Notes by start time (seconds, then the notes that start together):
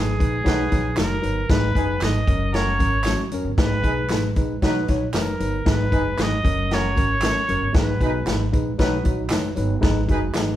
Already playing: G#1 G#3 D#4 G#4 B4
0.18 A#1 G#3 D#4 B4, kick, closed hi-hat, tambourine
0.44 B1 F#3 D#4 F#4 B4, kick, snare, closed hi-hat, tambourine
0.71 A#1 F#3 D#4 B4, kick, snare, closed hi-hat, tambourine
0.96 F#1 F#3 D#4 F#4 A#4, snare, clap, closed hi-hat, tambourine
1.22 G1 F#3 D#4 B4, closed hi-hat, tambourine
1.49 G#1 G#3 D#4 B4, kick, snare, closed hi-hat
1.74 F#1 G#3 D#4 G#4 B4, kick, closed hi-hat, tambourine
2.01 G#1 G#3 D#4 B4 D#5, snare, clap, closed hi-hat, tambourine
2.27 F#1 F#3 C#4 A#4, kick, closed hi-hat, tambourine
2.52 C#4 F#4 A#4 C#5, snare, closed hi-hat, tambourine
2.79 G#1 F#3 C#4 A#4, kick, closed hi-hat, tambourine
3.04 F#3 C#4 F#4, snare, clap, closed hi-hat, tambourine
3.31 F#1 F#3 C#4 A#4, closed hi-hat, tambourine
3.45 G1
3.57 G#1 G#3 D#4 B4, kick, snare, closed hi-hat
3.83 B1 G#3 D#4 G#4 B4, kick, closed hi-hat, tambourine
4.09 G#1 G#3 D#4 B4, snare, clap, closed hi-hat, tambourine
4.36 A#1 G#3 D#4 B4, kick, closed hi-hat, tambourine
4.61 B1 F#3 D#4 F#4 B4, kick, snare, closed hi-hat, tambourine
4.88 A#1 F#3 D#4 C#5, kick, snare, closed hi-hat, tambourine
5.14 F#1 F#3 D#4 A#4 B4, snare, clap, closed hi-hat, tambourine
5.39 G1 F#3 D#4 B4, closed hi-hat, tambourine
5.66 G#1 G#3 D#4 B4, kick, snare, closed hi-hat
5.70 B4
5.91 F#1 G#3 D#4 G#4 B4, kick, closed hi-hat, tambourine
6.17 G#1 G#3 D#4 B4, snare, clap, closed hi-hat, tambourine
6.22 D#5
6.44 F#1 F#3 C#4 A#4, kick, closed hi-hat, tambourine
6.71 C#4 F#4 A#4 C#5, snare, closed hi-hat, tambourine
6.96 G#1 F#3 C#4 A#4, kick, closed hi-hat, tambourine
7.22 F#3 C#4 A#4, snare, clap, closed hi-hat, tambourine
7.48 F#1 F#3 C#4 A#4, closed hi-hat, tambourine
7.62 G1
7.73 G#1 G#3 D#4 B4, kick, snare, closed hi-hat, tambourine
8.00 B1 G#3 D#4 F#4 G#4 B4, kick, closed hi-hat, tambourine
8.26 G#1 G#3 D#4 B4, snare, clap, closed hi-hat, tambourine
8.52 A#1 G#3 D#4 B4, kick, closed hi-hat, tambourine
8.78 B1 F#3 D#4 F#4 B4, kick, snare, closed hi-hat, tambourine
9.04 A#1 F#3 D#4 F#4, kick, closed hi-hat, tambourine
9.30 F#1 F#3 D#4 B4, snare, clap, closed hi-hat, tambourine
9.56 G1 F#3 D#4 B4, closed hi-hat, tambourine
9.81 G#1 G#3 D#4 B4, kick, snare, closed hi-hat
10.07 F#1 G#3 D#4 F#4 G#4 B4, kick, closed hi-hat, tambourine
10.33 G#1 G#3 D#4 B4, snare, clap, closed hi-hat, tambourine